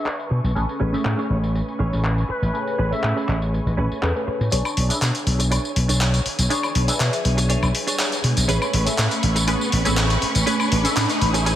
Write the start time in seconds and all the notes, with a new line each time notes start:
Already playing: D4 G#4 B4 E5 C#6
0.06 B4, clap, tambourine
0.20 tambourine
0.30 B2, muted clean electric guitar stroke
0.43 B1, muted clean electric guitar stroke, tambourine
0.55 A1 C#4 G#4 A4 B4 G#5, tambourine
0.69 tambourine
0.80 A1 C#4 G#4 B4
0.92 A3 C#4 G#4 E5, muted slap bass stroke, tambourine
1.05 A2, clap, tambourine
1.18 C#4 G#4 C#5, tambourine
1.30 A1
1.43 tambourine
1.54 muted clean electric guitar stroke, tambourine
1.68 tambourine
1.79 A1 C#4 G#4 C#5
1.92 A1, tambourine
2.04 clap, tambourine
2.18 tambourine
2.29 B4, muted clean electric guitar stroke, muted slap bass stroke
2.42 A1, muted clean electric guitar stroke, tambourine
2.53 A3 C#4 G#4 B4, tambourine
2.67 tambourine
2.78 A1 C#4 G#4 B4
2.91 A3 C#4 G#4 E5, muted slap bass stroke, tambourine
3.03 A2, muted clean electric guitar stroke, clap, tambourine
3.16 C#4 G#4 B4, tambourine
3.28 A1, clap
3.42 tambourine
3.53 muted clean electric guitar stroke, tambourine
3.66 A1, tambourine
3.77 A1 C#4 G#4 B4
3.91 muted slap bass stroke, tambourine
4.02 E2 C#4 G#4 A4 B4, clap, tambourine
4.15 A3 C#4 G#4 B4, tambourine
4.27 muted clean electric guitar stroke, muted slap bass stroke
4.40 A2, muted clean electric guitar stroke, tambourine
4.52 B1 D4 G#4 B4 C#5 G#5, closed hi-hat, tambourine, riser
4.65 tambourine, high woodblock
4.77 B1, open hi-hat
4.89 D4 G#4 B4 E5, muted slap bass stroke, closed hi-hat, tambourine
5.02 B2, clap, closed hi-hat, tambourine
5.15 closed hi-hat, tambourine
5.26 B1, open hi-hat
5.39 muted clean electric guitar stroke, closed hi-hat, tambourine
5.51 D4 G#4 C#5, closed hi-hat, tambourine, high woodblock
5.65 tambourine
5.76 B1, open hi-hat
5.88 B1 D4 G#4 C#5, closed hi-hat, tambourine
6.01 clap, closed hi-hat, tambourine
6.14 closed hi-hat, tambourine
6.26 muted slap bass stroke, open hi-hat
6.39 B1, closed hi-hat, tambourine
6.50 D4 G#4 B4 C#5, closed hi-hat, tambourine
6.63 tambourine, high woodblock
6.75 B1, open hi-hat
6.87 D4 G#4 B4 E5, muted slap bass stroke, closed hi-hat, tambourine
7.00 B2, clap, closed hi-hat, tambourine
7.13 closed hi-hat, tambourine
7.25 B1, open hi-hat
7.37 muted clean electric guitar stroke, closed hi-hat, tambourine
7.49 D4 G#4 C#5, closed hi-hat, tambourine
7.63 B1, tambourine, high woodblock
7.75 open hi-hat
7.87 D4 G#4 C#5, closed hi-hat, tambourine
7.99 clap, closed hi-hat, tambourine
8.12 closed hi-hat, tambourine
8.24 B2, open hi-hat
8.37 B1, closed hi-hat, tambourine
8.48 A1 A3 C#4 G#4 B4 B5 C#6, closed hi-hat, tambourine
8.62 tambourine, high woodblock
8.73 A1, open hi-hat
8.85 A3 C#4 G#4 E5, muted slap bass stroke, closed hi-hat, tambourine
8.98 A2, clap, closed hi-hat, tambourine
9.11 closed hi-hat, tambourine
9.23 A1, open hi-hat
9.35 muted clean electric guitar stroke, closed hi-hat, tambourine
9.47 A3 C#4 G#4 B4, closed hi-hat, tambourine, high woodblock
9.61 tambourine
9.72 A1, open hi-hat
9.85 A1 A3 C#4 G#4 B4 E5, closed hi-hat, tambourine
9.97 clap, closed hi-hat, tambourine
10.10 closed hi-hat, tambourine
10.22 muted slap bass stroke, open hi-hat
10.35 A1, closed hi-hat, tambourine
10.46 A3 C#4 G#4 B4, closed hi-hat, tambourine
10.60 tambourine, high woodblock
10.72 A1, open hi-hat
10.84 C#4 G#4 A4 E5, muted slap bass stroke, closed hi-hat, tambourine
10.96 A2 A3 C#4 G#4 B4, clap, closed hi-hat, tambourine
11.10 closed hi-hat, tambourine
11.21 A1, open hi-hat
11.33 C#4 G#4 A4 E5, muted clean electric guitar stroke, closed hi-hat, tambourine
11.46 C#4 G#4 A4 B4, closed hi-hat, tambourine